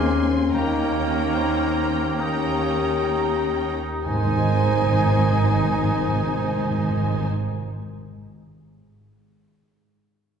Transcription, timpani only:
0.54 3.07 D#3 medium
4.05 4.11 G#2 medium
4.11 4.18 G#2 medium
4.18 4.24 G#2 medium
4.24 4.30 G#2 medium
4.31 4.37 G#2 medium
4.37 4.43 G#2 medium
4.43 4.49 G#2 medium
4.49 4.55 G#2 medium
4.55 4.61 G#2 medium
4.61 4.66 G#2 medium
4.66 4.73 G#2 medium
4.73 4.79 G#2 medium
4.79 4.86 G#2 medium
4.86 4.92 G#2 medium
4.92 4.98 G#2 medium
4.99 5.05 G#2 medium
5.05 5.11 G#2 medium
5.11 5.18 G#2 medium
5.18 5.24 G#2 medium
5.24 5.30 G#2 medium
5.30 5.37 G#2 medium
5.37 5.44 G#2 medium
5.44 5.50 G#2 medium
5.50 5.56 G#2 medium
5.56 5.62 G#2 medium
5.63 5.69 G#2 medium
5.70 5.76 G#2 medium
5.77 5.83 G#2 medium
5.83 5.90 G#2 medium
5.90 5.96 G#2 medium
5.96 6.03 G#2 medium
6.03 6.08 G#2 medium
6.08 6.14 G#2 medium
6.14 6.20 G#2 medium
6.20 6.27 G#2 medium
6.27 6.33 G#2 medium
6.34 6.40 G#2 medium
6.40 6.46 G#2 medium
6.46 6.52 G#2 medium
6.52 6.58 G#2 medium
6.59 6.65 G#2 medium
6.65 6.71 G#2 medium
6.71 6.77 G#2 medium
6.77 6.84 G#2 medium
6.84 6.90 G#2 medium
6.90 6.96 G#2 medium
6.97 7.03 G#2 medium
7.03 7.09 G#2 medium
7.09 7.15 G#2 medium
7.15 7.22 G#2 medium
7.22 7.28 G#2 medium

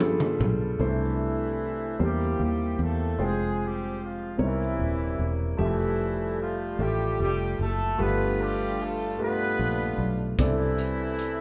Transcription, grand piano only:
0.00 0.81 G2 medium
0.00 0.82 G3 medium
0.00 0.80 D4 medium
0.00 0.81 F4 medium
0.00 0.81 G#4 medium
0.00 0.39 A4 medium
0.00 0.82 B4 medium
0.79 1.96 C3 soft
0.79 1.54 A3 soft
0.79 1.55 D4 soft
0.79 1.55 E4 soft
0.79 1.55 C5 medium
1.99 3.16 G3 soft
1.99 2.74 A#3 soft
1.99 2.06 D4 soft
1.99 2.75 G4 soft
1.99 2.75 C5 soft
2.06 2.78 E4 soft
3.19 3.94 G#3 medium
3.19 3.94 F4 soft
3.19 3.95 C5 medium
3.19 3.94 G5 soft
4.37 5.55 C3 soft
4.37 5.13 C4 soft
4.37 4.46 D#4 soft
4.37 5.14 A#4 soft
4.37 5.14 C#5 soft
4.44 5.17 E4 soft
5.57 6.34 F3 soft
5.57 6.33 A3 medium
5.57 6.34 G4 soft
5.57 6.34 E5 medium
6.79 7.54 A3 soft
6.79 7.55 F4 soft
6.79 7.55 G4 soft
6.79 7.55 E5 medium
7.98 9.15 G2 soft
7.98 8.73 A3 medium
7.98 8.74 F4 medium
7.98 8.74 G4 medium
7.98 8.74 B4 medium
9.18 9.94 A3 soft
9.18 9.94 F4 soft
9.18 9.94 G4 soft
9.18 9.94 B4 soft
10.38 11.41 C3 soft
10.38 11.14 C4 medium
10.38 10.46 D4 soft
10.38 11.14 A4 medium
10.38 11.14 D5 medium
10.45 11.17 E4 soft

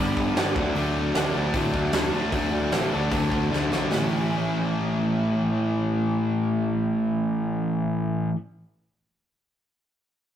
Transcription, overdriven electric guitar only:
0.00 0.35 G2 loud
0.00 0.36 D3 medium
0.00 0.35 G3 loud
0.00 0.36 B3 loud
0.00 0.37 D4 loud
0.36 0.55 G2 medium
0.36 0.54 D3 medium
0.36 0.55 G3 medium
0.36 0.55 B3 medium
0.36 0.57 D4 medium
0.56 0.74 D3 medium
0.56 0.75 F#3 medium
0.56 0.76 A3 medium
0.56 0.76 D4 loud
0.75 1.14 D3 medium
0.75 1.15 F#3 loud
0.75 1.15 A3 loud
0.75 1.16 D4 loud
1.14 1.34 D3 medium
1.14 1.35 F#3 medium
1.14 1.35 A3 medium
1.14 1.35 D4 medium
1.35 1.52 D3 medium
1.35 1.53 F#3 medium
1.35 1.54 A3 loud
1.35 1.53 D4 medium
1.54 1.92 D3 loud
1.54 1.92 F#3 loud
1.54 1.94 A3 medium
1.54 1.93 D4 medium
1.93 2.12 D3 medium
1.93 2.12 F#3 medium
1.93 2.13 A3 medium
1.93 2.13 D4 medium
2.13 2.31 D3 medium
2.13 2.31 F#3 medium
2.13 2.32 A3 medium
2.13 2.32 D4 medium
2.32 2.71 D3 medium
2.32 2.71 F#3 medium
2.32 2.72 A3 loud
2.32 2.72 D4 loud
2.72 2.91 D3 medium
2.72 2.91 F#3 medium
2.72 2.92 A3 medium
2.72 2.92 D4 medium
2.92 3.10 D3 medium
2.92 3.11 F#3 medium
2.92 3.11 A3 medium
2.92 3.11 D4 medium
3.12 3.51 D3 medium
3.12 3.51 F#3 medium
3.12 3.52 A3 medium
3.12 3.52 D4 loud
3.52 3.71 D3 medium
3.52 3.71 F#3 medium
3.52 3.72 A3 medium
3.52 3.72 D4 medium
3.72 3.90 D3 medium
3.72 3.91 F#3 medium
3.72 3.91 A3 medium
3.72 3.91 D4 medium
3.90 8.33 A2 medium
3.90 8.35 E3 medium
3.90 8.36 A3 medium
3.90 8.36 C#4 loud
3.90 8.37 E4 medium

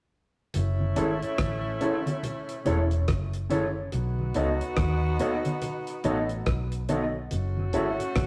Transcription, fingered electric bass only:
0.56 0.94 F#1 loud
0.98 1.21 G#1 medium
1.40 1.78 A1 medium
2.68 3.06 E1 medium
3.09 3.90 F#1 medium
3.94 4.33 B1 medium
4.36 4.59 C#2 medium
4.78 5.17 D#2 medium
6.06 6.44 A1 loud
6.47 7.28 B1 medium
7.32 7.71 F#1 loud
7.75 7.98 G#1 medium
8.17 8.27 A1 medium

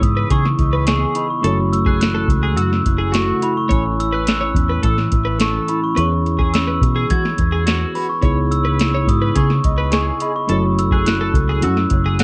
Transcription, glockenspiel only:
0.02 0.29 D#6 medium
0.32 0.87 C#6 loud
0.88 1.17 C#6 loud
1.16 1.30 B5 medium
1.30 1.74 C#6 medium
1.73 1.85 E6 loud
1.87 2.00 F#6 medium
2.01 2.53 F#6 loud
2.57 3.15 E6 loud
3.13 3.40 C#6 medium
3.43 3.49 B5 medium
3.57 3.96 C#6 medium
4.00 4.12 E6 loud
4.14 4.28 F#6 medium
4.28 4.80 E6 loud
4.85 5.37 E6 loud
5.41 5.67 C#6 loud
5.69 5.75 B5 medium
5.83 5.96 C#6 medium
5.98 6.55 C#6 loud
6.53 7.06 E6 loud
7.10 7.98 G#6 loud
7.95 8.10 B5 medium
8.09 8.49 C#6 loud
8.52 9.10 E6 loud
9.08 9.37 D#6 medium
9.37 9.90 C#6 medium
9.93 10.22 C#6 loud
10.22 10.35 B5 medium
10.36 10.79 C#6 loud
10.79 10.85 E6 loud
10.93 11.06 F#6 medium
11.07 11.65 F#6 loud
11.64 12.16 E6 loud
12.21 12.24 F#6 loud

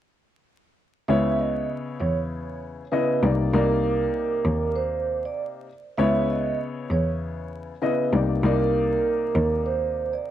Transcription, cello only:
1.09 1.57 C#2 loud
2.00 2.76 E2 medium
3.23 3.38 C2 loud
3.54 4.02 C2 loud
4.45 5.21 D#2 loud
5.98 6.47 C#2 loud
6.90 7.66 E2 medium
8.13 8.28 C2 medium
8.43 8.92 C2 loud
9.35 10.11 D#2 loud

